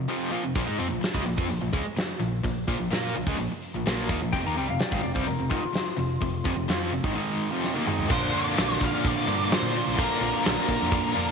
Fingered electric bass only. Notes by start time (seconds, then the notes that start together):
0.56 A#1
0.69 G#2
0.79 F2
0.91 A#1
1.15 C#2
1.26 A#1
1.38 F2
1.50 A#1
1.62 A#1
1.73 C#2
1.98 muted fingered electric bass stroke
2.21 A#1
2.44 A#1
2.68 A#1
2.80 A#1
2.92 A#2
3.16 A#1
3.27 C#2
3.39 A#1
3.51 muted fingered electric bass stroke
3.74 A#1
3.86 A#1
4.09 D#2
4.23 A#1
4.33 F1
4.47 D#2
4.58 C2
4.70 F1
4.92 G#1
5.05 F1
5.16 C2
5.27 F1
5.40 F1
5.52 G#1
5.74 muted fingered electric bass stroke
5.98 F1
6.22 F1
6.46 F1
6.57 F1
6.69 F2
6.92 F1
7.04 G#1
8.10 A#1
8.58 A#1
8.81 A#1
9.05 A#2
9.27 G2
9.62 A#2
9.87 A#1
10.21 A#1
10.46 A#1
10.68 A#2
10.82 F2
11.17 F2